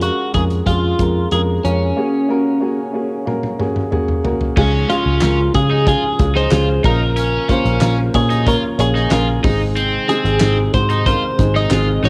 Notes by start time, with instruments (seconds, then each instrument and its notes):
Already playing: upright piano F3 C#4 F4 G#4 A#4
0.00 upright piano G#3 C#4 F4 A#4, clean electric guitar F#4, closed hi-hat
0.34 picked electric bass F2, upright piano G#3 C#4 F4 A#4, clean electric guitar G#4, kick, closed hi-hat
0.50 closed hi-hat
0.67 picked electric bass F2, upright piano G#3 C#4 F4 G#4, clean electric guitar F4, kick, closed hi-hat
0.99 picked electric bass F2, upright piano G#3 C#4 F4 A#4, kick, closed hi-hat
1.31 picked electric bass F2, upright piano G#3 C#4 F4 A#4, clean electric guitar G#4, closed hi-hat
1.64 picked electric bass F2, upright piano G#3 C#4 F4 A#4, clean electric guitar C#4, closed hi-hat
1.97 upright piano C#3 A#3 C#4 F#4 G#4
2.29 upright piano A#3 C#4 F#4 A#4
2.60 upright piano A#3 C#4 F#4 G#4
2.93 upright piano A#3 C#4 F#4 G#4
3.26 upright piano A#3 C#4 F#4 A#4, high tom
3.43 high tom
3.59 upright piano A#3 C#4 F#4 G#4, mid tom
3.76 mid tom
3.91 upright piano A#3 C#4 F#4 G#4, mid tom
4.08 mid tom
4.24 upright piano A#3 C#4 F#4 A#4, floor tom
4.41 floor tom
4.57 picked electric bass C#2, upright piano G#2 G#3 C#4 F4 G#4, tonewheel organ C#3 F3 G#3 F4, overdriven electric guitar C#4, kick, crash
4.89 upright piano G#3 C#4 F4 G#4, overdriven electric guitar C#4, clean electric guitar F4, closed hi-hat
5.06 picked electric bass C#2
5.21 picked electric bass C#2, upright piano G#3 C#4 F4 A#4, overdriven electric guitar C#4, snare, clap, closed hi-hat
5.54 picked electric bass C#3, upright piano G#3 C#4 F4 G#4, clean electric guitar G#4, kick, closed hi-hat
5.71 overdriven electric guitar D#4
5.87 upright piano G#3 C#4 F4 G#4, overdriven electric guitar F4, clean electric guitar G#4, kick, closed hi-hat
6.19 picked electric bass C#2, upright piano G#3 C#4 F4 G#4, kick, closed hi-hat
6.35 overdriven electric guitar D#4, clean electric guitar C5, snare
6.51 picked electric bass C#2, upright piano G#3 C#4 F4 G#4, overdriven electric guitar F4, snare, clap, closed hi-hat
6.84 picked electric bass A#1, upright piano A#3 C#4 F4 A#4, tonewheel organ A#3, overdriven electric guitar D#4, clean electric guitar A#4, kick, crash
7.17 overdriven electric guitar C#4, closed hi-hat
7.49 upright piano A#3 C#4 F4 C5, overdriven electric guitar C#4, kick, closed hi-hat
7.65 picked electric bass A#1, closed hi-hat
7.81 picked electric bass A#1, upright piano A#3 C#4 F4 A#4, overdriven electric guitar C#4, snare, clap, closed hi-hat
8.14 picked electric bass A#2, upright piano A#3 C#4 F4 C#5, clean electric guitar G#4, kick, closed hi-hat
8.30 overdriven electric guitar D#4, closed hi-hat
8.46 upright piano A#3 C#4 F4 C#5, overdriven electric guitar F4, clean electric guitar A#4, kick, closed hi-hat
8.78 picked electric bass A#1, upright piano A#3 C#4 F4 C#5, clean electric guitar G#4, closed hi-hat
8.95 overdriven electric guitar D#4, snare
9.10 picked electric bass A#1, upright piano A#3 C#4 F4 A#4, overdriven electric guitar F4, snare, clap, closed hi-hat
9.43 picked electric bass G#1, tonewheel organ C3 D#3 G#3 D#4, upright piano G#3 C4 D#4 G#4, overdriven electric guitar D#4, kick, open hi-hat
9.76 overdriven electric guitar C4, closed hi-hat
10.08 upright piano G#3 C4 D#4 G#4, overdriven electric guitar C4, clean electric guitar G#4, closed hi-hat
10.25 picked electric bass G#1, closed hi-hat
10.40 picked electric bass G#1, upright piano G#3 C4 D#4 G#4, overdriven electric guitar C4, snare, clap, closed hi-hat
10.73 picked electric bass G#2, upright piano G#3 C4 D#4 F#4, clean electric guitar C5, kick, closed hi-hat
10.90 overdriven electric guitar D#4, closed hi-hat
11.06 upright piano G#3 C4 D#4 A#4, overdriven electric guitar F4, clean electric guitar C5, kick, closed hi-hat
11.38 picked electric bass G#1, upright piano G#3 C4 D#4 G#4, kick, closed hi-hat
11.55 overdriven electric guitar D#4, clean electric guitar D#5, snare
11.70 picked electric bass G#1, upright piano G#3 C4 D#4 G#4, overdriven electric guitar F4, snare, clap, closed hi-hat
12.03 picked electric bass A1, upright piano G#3 C4 D#4 F#4, overdriven electric guitar D#4, clean electric guitar C#5, open hi-hat